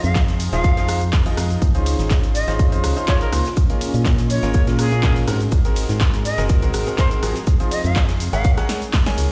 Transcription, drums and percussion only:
0.04 closed hi-hat, shaker
0.15 kick, snare, clap, closed hi-hat, ride, shaker
0.28 snare, closed hi-hat, shaker
0.40 open hi-hat, ride, shaker
0.53 snare, closed hi-hat, shaker
0.64 kick, closed hi-hat, ride, shaker
0.77 snare, closed hi-hat, shaker
0.88 cross-stick, open hi-hat, ride, shaker
1.02 closed hi-hat, shaker
1.13 kick, snare, clap, closed hi-hat, open hi-hat, ride, shaker
1.26 closed hi-hat, shaker
1.37 cross-stick, snare, open hi-hat, ride, shaker
1.50 closed hi-hat, shaker
1.62 kick, closed hi-hat, ride, shaker
1.75 closed hi-hat, shaker
1.86 open hi-hat, ride, shaker
1.99 snare, closed hi-hat, shaker
2.11 kick, snare, clap, closed hi-hat, ride, shaker
2.23 snare, closed hi-hat, shaker
2.35 open hi-hat, ride, shaker
2.48 snare, closed hi-hat, shaker
2.59 kick, closed hi-hat, ride, shaker
2.72 closed hi-hat, shaker
2.84 cross-stick, open hi-hat, ride, shaker
2.97 closed hi-hat, shaker
3.07 kick, snare, clap, closed hi-hat, ride, shaker
3.21 closed hi-hat, shaker
3.33 cross-stick, open hi-hat, ride, shaker
3.45 snare, closed hi-hat, shaker
3.57 kick, closed hi-hat, ride, shaker
3.70 closed hi-hat, shaker
3.81 open hi-hat, ride, shaker
3.94 closed hi-hat, shaker
4.05 kick, snare, clap, closed hi-hat, ride, shaker
4.18 snare, closed hi-hat, shaker
4.30 open hi-hat, ride, shaker
4.43 snare, closed hi-hat, shaker
4.54 kick, closed hi-hat, ride, shaker
4.67 snare, closed hi-hat, shaker
4.79 cross-stick, open hi-hat, ride, shaker
4.92 closed hi-hat, shaker
5.03 kick, snare, clap, closed hi-hat, open hi-hat, ride, shaker
5.16 closed hi-hat, shaker
5.28 cross-stick, snare, open hi-hat, ride, shaker
5.41 closed hi-hat, shaker
5.52 kick, closed hi-hat, ride, shaker
5.65 closed hi-hat, shaker
5.76 open hi-hat, ride, shaker
5.89 snare, closed hi-hat, shaker
6.00 kick, snare, clap, closed hi-hat, ride, shaker
6.14 snare, closed hi-hat, shaker
6.25 open hi-hat, ride, shaker
6.38 snare, closed hi-hat, shaker
6.49 kick, closed hi-hat, ride, shaker
6.62 closed hi-hat, shaker
6.73 cross-stick, open hi-hat, ride, shaker
6.87 closed hi-hat, shaker
6.98 kick, snare, clap, closed hi-hat, ride, shaker
7.11 closed hi-hat, shaker
7.23 cross-stick, open hi-hat, ride, shaker
7.35 snare, closed hi-hat, shaker
7.47 kick, closed hi-hat, ride, shaker
7.60 closed hi-hat, shaker
7.71 open hi-hat, ride, shaker
7.84 closed hi-hat, shaker
7.96 kick, snare, clap, closed hi-hat, ride, shaker
8.09 snare, closed hi-hat, shaker
8.20 open hi-hat, ride, shaker
8.33 closed hi-hat, shaker
8.44 kick, closed hi-hat, ride, shaker
8.57 cross-stick, snare, closed hi-hat, shaker
8.69 snare, open hi-hat, ride, shaker
8.82 closed hi-hat, shaker
8.93 kick, snare, clap, closed hi-hat, open hi-hat, ride, shaker
9.06 snare, closed hi-hat, shaker
9.18 snare, open hi-hat, ride, shaker

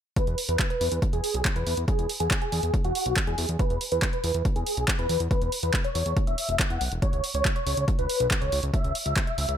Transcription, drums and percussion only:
0.16 kick, closed hi-hat
0.27 closed hi-hat
0.38 open hi-hat
0.49 closed hi-hat
0.59 kick, clap, closed hi-hat
0.70 closed hi-hat
0.81 open hi-hat
0.92 closed hi-hat
1.02 kick, closed hi-hat
1.13 closed hi-hat
1.24 open hi-hat
1.34 closed hi-hat
1.45 kick, clap, closed hi-hat
1.56 closed hi-hat
1.67 open hi-hat
1.77 closed hi-hat
1.88 kick, closed hi-hat
1.99 closed hi-hat
2.09 open hi-hat
2.20 closed hi-hat
2.31 kick, clap, closed hi-hat
2.42 closed hi-hat
2.52 open hi-hat
2.63 closed hi-hat
2.74 kick, closed hi-hat
2.84 closed hi-hat
2.95 open hi-hat
3.06 closed hi-hat
3.17 kick, clap, closed hi-hat
3.27 closed hi-hat
3.38 open hi-hat
3.49 closed hi-hat
3.59 kick, closed hi-hat
3.70 closed hi-hat
3.81 open hi-hat
3.92 closed hi-hat
4.02 kick, clap, closed hi-hat
4.13 closed hi-hat
4.24 open hi-hat
4.34 closed hi-hat
4.45 kick, closed hi-hat
4.56 closed hi-hat
4.67 open hi-hat
4.77 closed hi-hat
4.88 kick, clap, closed hi-hat
4.99 closed hi-hat
5.09 open hi-hat
5.20 closed hi-hat
5.31 kick, closed hi-hat
5.42 closed hi-hat
5.52 open hi-hat
5.63 closed hi-hat
5.74 kick, clap, closed hi-hat
5.84 closed hi-hat
5.95 open hi-hat
6.06 closed hi-hat
6.17 kick, closed hi-hat
6.27 closed hi-hat
6.38 open hi-hat
6.49 closed hi-hat
6.59 kick, clap, closed hi-hat
6.70 closed hi-hat
6.81 open hi-hat
6.92 closed hi-hat
7.02 kick, closed hi-hat
7.13 closed hi-hat
7.24 open hi-hat
7.34 closed hi-hat
7.45 kick, clap, closed hi-hat
7.56 closed hi-hat
7.67 open hi-hat
7.77 closed hi-hat
7.88 kick, closed hi-hat
7.99 closed hi-hat
8.09 open hi-hat
8.20 closed hi-hat
8.31 kick, clap, closed hi-hat
8.42 closed hi-hat
8.52 open hi-hat
8.63 closed hi-hat
8.74 kick, closed hi-hat
8.84 closed hi-hat
8.95 open hi-hat
9.06 closed hi-hat
9.16 kick, clap, closed hi-hat
9.27 closed hi-hat
9.38 open hi-hat
9.49 closed hi-hat

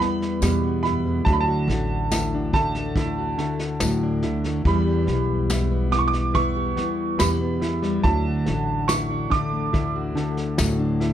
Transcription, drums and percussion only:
0.01 snare
0.22 snare
0.42 snare, tambourine
0.85 snare
1.26 kick, snare
1.69 snare
2.12 snare, tambourine
2.53 kick, snare
2.75 snare
2.96 kick, snare
3.39 snare
3.59 snare
3.80 snare, tambourine
4.22 snare
4.44 snare
4.65 kick, snare
5.08 snare
5.50 snare, tambourine
5.92 snare
6.13 snare
6.35 kick, snare
6.77 snare
7.19 snare, tambourine
7.62 snare
7.83 snare
8.04 kick, snare
8.46 snare
8.89 snare, tambourine
9.32 kick, snare
9.74 kick, snare
10.17 snare
10.37 snare
10.58 snare, tambourine
11.01 snare

